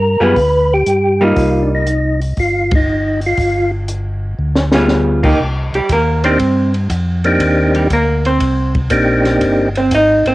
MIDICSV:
0, 0, Header, 1, 5, 480
1, 0, Start_track
1, 0, Key_signature, -3, "minor"
1, 0, Tempo, 502513
1, 1310, Time_signature, 4, 2, 24, 8
1, 9883, End_track
2, 0, Start_track
2, 0, Title_t, "Hollow-body jazz guitar"
2, 0, Program_c, 0, 26
2, 194, Note_on_c, 0, 55, 62
2, 200, Note_on_c, 0, 65, 69
2, 201, Note_on_c, 0, 59, 70
2, 205, Note_on_c, 0, 68, 77
2, 331, Note_off_c, 0, 55, 0
2, 335, Note_off_c, 0, 59, 0
2, 335, Note_off_c, 0, 65, 0
2, 337, Note_off_c, 0, 68, 0
2, 1154, Note_on_c, 0, 55, 78
2, 1163, Note_on_c, 0, 58, 74
2, 1166, Note_on_c, 0, 63, 70
2, 1757, Note_off_c, 0, 55, 0
2, 1761, Note_off_c, 0, 58, 0
2, 1763, Note_off_c, 0, 63, 0
2, 4520, Note_on_c, 0, 55, 59
2, 4526, Note_on_c, 0, 59, 63
2, 4529, Note_on_c, 0, 65, 64
2, 4530, Note_on_c, 0, 68, 70
2, 4968, Note_off_c, 0, 55, 0
2, 4970, Note_off_c, 0, 59, 0
2, 4972, Note_off_c, 0, 65, 0
2, 4972, Note_off_c, 0, 68, 0
2, 4997, Note_on_c, 0, 58, 67
2, 5004, Note_on_c, 0, 63, 67
2, 5011, Note_on_c, 0, 67, 70
2, 5134, Note_off_c, 0, 58, 0
2, 5137, Note_off_c, 0, 63, 0
2, 5140, Note_off_c, 0, 67, 0
2, 5492, Note_on_c, 0, 67, 76
2, 5499, Note_on_c, 0, 55, 59
2, 5632, Note_off_c, 0, 67, 0
2, 5635, Note_off_c, 0, 55, 0
2, 5657, Note_on_c, 0, 70, 69
2, 5665, Note_on_c, 0, 58, 54
2, 5959, Note_off_c, 0, 70, 0
2, 5962, Note_on_c, 0, 72, 97
2, 5968, Note_on_c, 0, 60, 71
2, 5969, Note_off_c, 0, 58, 0
2, 6408, Note_off_c, 0, 72, 0
2, 6411, Note_off_c, 0, 60, 0
2, 7411, Note_on_c, 0, 55, 32
2, 7412, Note_on_c, 0, 67, 38
2, 7549, Note_off_c, 0, 67, 0
2, 7551, Note_off_c, 0, 55, 0
2, 7573, Note_on_c, 0, 58, 62
2, 7577, Note_on_c, 0, 70, 71
2, 7882, Note_off_c, 0, 70, 0
2, 7883, Note_off_c, 0, 58, 0
2, 7891, Note_on_c, 0, 60, 66
2, 7895, Note_on_c, 0, 72, 68
2, 8332, Note_off_c, 0, 60, 0
2, 8332, Note_off_c, 0, 72, 0
2, 9337, Note_on_c, 0, 72, 74
2, 9343, Note_on_c, 0, 60, 59
2, 9473, Note_off_c, 0, 72, 0
2, 9475, Note_off_c, 0, 60, 0
2, 9501, Note_on_c, 0, 75, 90
2, 9506, Note_on_c, 0, 63, 73
2, 9805, Note_off_c, 0, 75, 0
2, 9807, Note_off_c, 0, 63, 0
2, 9814, Note_on_c, 0, 72, 90
2, 9818, Note_on_c, 0, 60, 67
2, 9883, Note_off_c, 0, 60, 0
2, 9883, Note_off_c, 0, 72, 0
2, 9883, End_track
3, 0, Start_track
3, 0, Title_t, "Tonewheel organ"
3, 0, Program_c, 1, 16
3, 0, Note_on_c, 1, 70, 95
3, 218, Note_on_c, 1, 71, 114
3, 223, Note_off_c, 1, 70, 0
3, 703, Note_off_c, 1, 71, 0
3, 703, Note_on_c, 1, 67, 111
3, 1177, Note_on_c, 1, 65, 87
3, 1186, Note_off_c, 1, 67, 0
3, 1554, Note_on_c, 1, 62, 56
3, 1567, Note_off_c, 1, 65, 0
3, 1643, Note_off_c, 1, 62, 0
3, 1670, Note_on_c, 1, 63, 78
3, 2103, Note_off_c, 1, 63, 0
3, 2288, Note_on_c, 1, 65, 92
3, 2619, Note_off_c, 1, 65, 0
3, 2629, Note_on_c, 1, 63, 82
3, 3062, Note_off_c, 1, 63, 0
3, 3118, Note_on_c, 1, 65, 97
3, 3547, Note_off_c, 1, 65, 0
3, 5961, Note_on_c, 1, 58, 69
3, 5963, Note_on_c, 1, 60, 58
3, 5966, Note_on_c, 1, 62, 61
3, 5973, Note_on_c, 1, 63, 58
3, 5975, Note_on_c, 1, 67, 74
3, 6095, Note_off_c, 1, 58, 0
3, 6096, Note_off_c, 1, 60, 0
3, 6098, Note_off_c, 1, 62, 0
3, 6102, Note_off_c, 1, 63, 0
3, 6102, Note_off_c, 1, 67, 0
3, 6919, Note_on_c, 1, 58, 60
3, 6923, Note_on_c, 1, 60, 59
3, 6927, Note_on_c, 1, 62, 61
3, 6932, Note_on_c, 1, 63, 56
3, 6938, Note_on_c, 1, 67, 69
3, 7519, Note_off_c, 1, 58, 0
3, 7521, Note_off_c, 1, 60, 0
3, 7523, Note_off_c, 1, 62, 0
3, 7526, Note_off_c, 1, 63, 0
3, 7529, Note_off_c, 1, 67, 0
3, 8504, Note_on_c, 1, 58, 71
3, 8512, Note_on_c, 1, 60, 64
3, 8512, Note_on_c, 1, 62, 67
3, 8517, Note_on_c, 1, 63, 60
3, 8525, Note_on_c, 1, 67, 72
3, 9249, Note_off_c, 1, 58, 0
3, 9253, Note_off_c, 1, 62, 0
3, 9254, Note_off_c, 1, 60, 0
3, 9256, Note_off_c, 1, 63, 0
3, 9260, Note_off_c, 1, 67, 0
3, 9883, End_track
4, 0, Start_track
4, 0, Title_t, "Tonewheel organ"
4, 0, Program_c, 2, 16
4, 0, Note_on_c, 2, 43, 86
4, 161, Note_off_c, 2, 43, 0
4, 193, Note_on_c, 2, 42, 65
4, 335, Note_off_c, 2, 42, 0
4, 348, Note_on_c, 2, 38, 88
4, 795, Note_off_c, 2, 38, 0
4, 825, Note_on_c, 2, 43, 69
4, 1274, Note_off_c, 2, 43, 0
4, 1302, Note_on_c, 2, 36, 91
4, 2228, Note_off_c, 2, 36, 0
4, 2262, Note_on_c, 2, 31, 80
4, 3188, Note_off_c, 2, 31, 0
4, 3228, Note_on_c, 2, 31, 89
4, 4151, Note_off_c, 2, 31, 0
4, 4190, Note_on_c, 2, 38, 88
4, 5112, Note_off_c, 2, 38, 0
4, 5146, Note_on_c, 2, 36, 83
4, 5455, Note_off_c, 2, 36, 0
4, 5473, Note_on_c, 2, 36, 39
4, 5550, Note_off_c, 2, 36, 0
4, 5629, Note_on_c, 2, 39, 86
4, 6095, Note_off_c, 2, 39, 0
4, 6105, Note_on_c, 2, 43, 87
4, 6573, Note_off_c, 2, 43, 0
4, 6587, Note_on_c, 2, 41, 86
4, 7054, Note_off_c, 2, 41, 0
4, 7066, Note_on_c, 2, 39, 92
4, 7533, Note_off_c, 2, 39, 0
4, 7552, Note_on_c, 2, 38, 90
4, 8016, Note_off_c, 2, 38, 0
4, 8031, Note_on_c, 2, 36, 85
4, 8495, Note_off_c, 2, 36, 0
4, 8510, Note_on_c, 2, 34, 83
4, 8974, Note_off_c, 2, 34, 0
4, 8989, Note_on_c, 2, 31, 83
4, 9454, Note_off_c, 2, 31, 0
4, 9468, Note_on_c, 2, 32, 89
4, 9774, Note_off_c, 2, 32, 0
4, 9788, Note_on_c, 2, 32, 42
4, 9865, Note_off_c, 2, 32, 0
4, 9883, End_track
5, 0, Start_track
5, 0, Title_t, "Drums"
5, 347, Note_on_c, 9, 46, 45
5, 348, Note_on_c, 9, 36, 35
5, 443, Note_off_c, 9, 46, 0
5, 444, Note_off_c, 9, 36, 0
5, 825, Note_on_c, 9, 42, 52
5, 921, Note_off_c, 9, 42, 0
5, 1303, Note_on_c, 9, 46, 49
5, 1305, Note_on_c, 9, 36, 33
5, 1398, Note_off_c, 9, 46, 0
5, 1401, Note_off_c, 9, 36, 0
5, 1782, Note_on_c, 9, 42, 55
5, 1878, Note_off_c, 9, 42, 0
5, 2115, Note_on_c, 9, 46, 38
5, 2210, Note_off_c, 9, 46, 0
5, 2263, Note_on_c, 9, 46, 45
5, 2266, Note_on_c, 9, 36, 36
5, 2359, Note_off_c, 9, 46, 0
5, 2362, Note_off_c, 9, 36, 0
5, 2592, Note_on_c, 9, 51, 68
5, 2597, Note_on_c, 9, 36, 79
5, 2688, Note_off_c, 9, 51, 0
5, 2693, Note_off_c, 9, 36, 0
5, 3072, Note_on_c, 9, 46, 34
5, 3167, Note_off_c, 9, 46, 0
5, 3224, Note_on_c, 9, 46, 46
5, 3228, Note_on_c, 9, 36, 36
5, 3319, Note_off_c, 9, 46, 0
5, 3324, Note_off_c, 9, 36, 0
5, 3709, Note_on_c, 9, 42, 52
5, 3804, Note_off_c, 9, 42, 0
5, 4351, Note_on_c, 9, 38, 59
5, 4446, Note_off_c, 9, 38, 0
5, 4505, Note_on_c, 9, 38, 74
5, 4601, Note_off_c, 9, 38, 0
5, 4665, Note_on_c, 9, 38, 49
5, 4761, Note_off_c, 9, 38, 0
5, 5001, Note_on_c, 9, 36, 68
5, 5003, Note_on_c, 9, 49, 62
5, 5096, Note_off_c, 9, 36, 0
5, 5098, Note_off_c, 9, 49, 0
5, 5150, Note_on_c, 9, 36, 24
5, 5245, Note_off_c, 9, 36, 0
5, 5482, Note_on_c, 9, 51, 45
5, 5578, Note_off_c, 9, 51, 0
5, 5627, Note_on_c, 9, 44, 60
5, 5627, Note_on_c, 9, 51, 67
5, 5629, Note_on_c, 9, 36, 26
5, 5723, Note_off_c, 9, 44, 0
5, 5723, Note_off_c, 9, 51, 0
5, 5725, Note_off_c, 9, 36, 0
5, 5957, Note_on_c, 9, 51, 46
5, 6053, Note_off_c, 9, 51, 0
5, 6107, Note_on_c, 9, 51, 65
5, 6108, Note_on_c, 9, 36, 19
5, 6202, Note_off_c, 9, 51, 0
5, 6204, Note_off_c, 9, 36, 0
5, 6438, Note_on_c, 9, 51, 39
5, 6534, Note_off_c, 9, 51, 0
5, 6588, Note_on_c, 9, 36, 19
5, 6588, Note_on_c, 9, 44, 57
5, 6588, Note_on_c, 9, 51, 57
5, 6683, Note_off_c, 9, 44, 0
5, 6683, Note_off_c, 9, 51, 0
5, 6684, Note_off_c, 9, 36, 0
5, 6916, Note_on_c, 9, 51, 42
5, 7012, Note_off_c, 9, 51, 0
5, 7068, Note_on_c, 9, 36, 19
5, 7068, Note_on_c, 9, 51, 63
5, 7163, Note_off_c, 9, 51, 0
5, 7164, Note_off_c, 9, 36, 0
5, 7399, Note_on_c, 9, 51, 48
5, 7494, Note_off_c, 9, 51, 0
5, 7549, Note_on_c, 9, 36, 27
5, 7549, Note_on_c, 9, 44, 58
5, 7549, Note_on_c, 9, 51, 64
5, 7644, Note_off_c, 9, 44, 0
5, 7644, Note_off_c, 9, 51, 0
5, 7645, Note_off_c, 9, 36, 0
5, 7881, Note_on_c, 9, 51, 45
5, 7976, Note_off_c, 9, 51, 0
5, 8027, Note_on_c, 9, 51, 63
5, 8029, Note_on_c, 9, 36, 22
5, 8122, Note_off_c, 9, 51, 0
5, 8125, Note_off_c, 9, 36, 0
5, 8356, Note_on_c, 9, 51, 41
5, 8360, Note_on_c, 9, 36, 50
5, 8452, Note_off_c, 9, 51, 0
5, 8455, Note_off_c, 9, 36, 0
5, 8503, Note_on_c, 9, 44, 60
5, 8503, Note_on_c, 9, 51, 62
5, 8509, Note_on_c, 9, 36, 21
5, 8599, Note_off_c, 9, 44, 0
5, 8599, Note_off_c, 9, 51, 0
5, 8604, Note_off_c, 9, 36, 0
5, 8838, Note_on_c, 9, 51, 42
5, 8840, Note_on_c, 9, 38, 31
5, 8934, Note_off_c, 9, 51, 0
5, 8936, Note_off_c, 9, 38, 0
5, 8989, Note_on_c, 9, 51, 56
5, 8990, Note_on_c, 9, 36, 22
5, 9084, Note_off_c, 9, 51, 0
5, 9085, Note_off_c, 9, 36, 0
5, 9317, Note_on_c, 9, 51, 50
5, 9412, Note_off_c, 9, 51, 0
5, 9468, Note_on_c, 9, 44, 52
5, 9468, Note_on_c, 9, 51, 72
5, 9470, Note_on_c, 9, 36, 22
5, 9563, Note_off_c, 9, 44, 0
5, 9563, Note_off_c, 9, 51, 0
5, 9565, Note_off_c, 9, 36, 0
5, 9797, Note_on_c, 9, 51, 44
5, 9883, Note_off_c, 9, 51, 0
5, 9883, End_track
0, 0, End_of_file